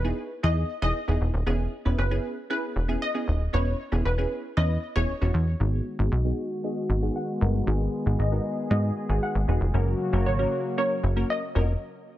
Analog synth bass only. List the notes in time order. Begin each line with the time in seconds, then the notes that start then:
Already playing: E1
0.43 E2
0.82 E1
1.08 E1
1.21 E1
1.34 D#1
1.47 E1
1.86 E1
1.98 F#1
2.76 E1
3.28 D#1
3.54 E1
3.92 E1
4.05 E1
4.57 E2
4.96 E1
5.22 E1
5.34 E2
5.60 G#1
5.99 G#1
6.12 B1
6.89 G#1
7.41 G1
7.67 G#1
8.06 G#1
8.19 G#1
8.71 G#2
9.09 G#1
9.35 G#1
9.48 E1
9.61 F1
9.74 F#1
10.13 F#1
10.26 G#1
11.03 F#1
11.55 F1